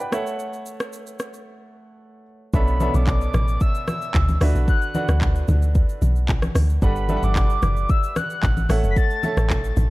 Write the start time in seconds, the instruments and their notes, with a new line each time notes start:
Already playing: grand piano G3 D4 A4 D5 F#5 B5 D6
0.00 grand piano B4 G5, shaker
0.12 grand piano A3 A4 C#5 E5 F#5, cross-stick, shaker
0.27 shaker
0.39 shaker
0.53 shaker
0.66 shaker
0.80 cross-stick, shaker
0.93 shaker
1.07 shaker
1.19 cross-stick, shaker
1.34 shaker
2.54 log drum bass B1, grand piano B2 B3 C#4 D4 A4 E5, soft synth lead B5, kick, shaker
2.67 shaker
2.80 grand piano B2 B3 C#4 D4 A4 E5, high conga, shaker
2.94 log drum bass B1, soft synth lead D6, high conga, shaker
3.07 kick, clap, low conga, shaker
3.21 shaker
3.34 log drum bass A1, cross-stick, high conga, low conga, shaker
3.48 shaker
3.61 soft synth lead E6, kick, shaker
3.75 shaker
3.88 soft synth lead E6, cross-stick, high conga, shaker
4.02 shaker
4.14 log drum bass D2, kick, clap, low conga, shaker
4.28 high conga, shaker
4.41 log drum bass D2, grand piano D3 D4 F#4 B4 E5, cross-stick, open hi-hat, high conga, shaker
4.55 log drum bass B1, shaker
4.68 soft synth lead F#6, kick, shaker
4.82 shaker
4.94 grand piano D3 D4 F#4 B4 F#5, high conga, shaker
5.09 log drum bass D2, cross-stick, high conga, shaker
5.21 kick, clap, low conga, shaker
5.35 shaker
5.48 log drum bass D2, high conga, low conga, shaker
5.62 shaker
5.75 kick, shaker
5.89 shaker
6.02 log drum bass B1, high conga, shaker
6.16 shaker
6.28 kick, clap, low conga, shaker
6.42 cross-stick, high conga, shaker
6.55 log drum bass D2, cross-stick, open hi-hat, high conga, shaker
6.69 shaker
6.82 log drum bass G1, grand piano G3 D4 A4 B4 F#5, soft synth lead B5, kick, shaker
6.96 shaker
7.09 grand piano G3 D4 A4 B4 E5, high conga, shaker
7.17 grand piano F#5
7.23 log drum bass G1, soft synth lead D6, high conga, shaker
7.36 kick, clap, low conga, shaker
7.50 shaker
7.62 log drum bass F#1, cross-stick, high conga, low conga, shaker
7.77 shaker
7.89 soft synth lead E6, kick, shaker
8.03 shaker
8.16 soft synth lead F#6, cross-stick, high conga, shaker
8.30 shaker
8.43 log drum bass A1, kick, clap, low conga, shaker
8.57 high conga, shaker
8.69 log drum bass A1, grand piano A3 A4 C#5 E5 F#5, cross-stick, open hi-hat, high conga, shaker
8.84 log drum bass F#1, shaker
8.91 soft synth lead B6
8.97 soft synth lead A6, kick, shaker
9.10 shaker
9.23 grand piano A3 A4 C#5 E5 A5, high conga, shaker
9.37 log drum bass A1, cross-stick, high conga, shaker
9.50 kick, clap, low conga, shaker
9.64 shaker
9.77 log drum bass A1, high conga, low conga, shaker